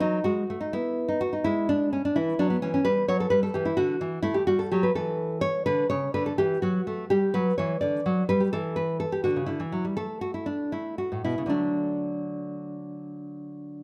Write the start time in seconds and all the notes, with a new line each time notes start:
0.00 F#3 D#4
0.24 G#3 F#4
0.50 A3
0.61 D#4
0.73 B3 E4
1.08 D#4
1.21 F#4
1.33 D#4
1.44 G#3 E4
1.69 D4
1.93 C#4
2.05 D4
2.16 E3 E4
2.39 F#3 D4
2.50 B3
2.62 E3 C#4
2.74 C#4
2.85 G3 B4
3.08 F#3 C#5
3.20 A4
3.30 G3 B4
3.43 A4
3.54 E3 G4
3.65 E4
3.77 D3 F#4
4.01 E3
4.23 A3 E4
4.34 G4
4.47 G3 F#4
4.59 A4
4.72 F#3 G4
4.83 B4
4.95 E3 A4
5.41 C#5
5.66 D3 B4
5.90 C#3 C#5
6.14 D3 B4
6.26 A4
6.38 E3 G4
6.62 F#3 F#4
6.87 A3
7.10 G3 G4
7.34 F#3 B4
7.58 E3 C#5
7.81 D3 D5
8.06 F#3
8.29 G3 B4
8.40 G4
8.53 E3 A4
8.76 B4
9.00 A4
9.12 G4
9.24 D3 F#4
9.36 C#3
9.46 D3 E4
9.60 E3
9.72 F#3
9.85 G3
9.97 A3 A4
10.21 F#4
10.34 E4
10.46 D4
10.72 A3 E4
10.98 F#4
11.12 A2
11.24 B2 E4
11.38 C#3
11.46 D3 F#3 A3 D4